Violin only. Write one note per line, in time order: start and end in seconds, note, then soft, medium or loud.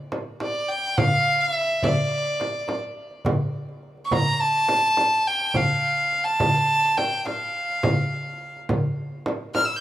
0.42 0.71 D5 medium
0.69 1.00 G5 medium
0.98 1.42 F5 loud
1.41 1.85 E5 medium
1.84 2.78 D5 medium
4.05 4.14 C#6 medium
4.12 4.43 A#5 medium
4.41 5.29 A5 medium
5.27 5.58 G5 medium
5.56 6.26 F5 medium
6.24 6.99 A5 loud
6.98 7.27 G5 medium
7.25 8.58 F5 medium
9.54 9.67 F6 medium
9.65 9.78 E6 medium
9.76 9.80 G6 medium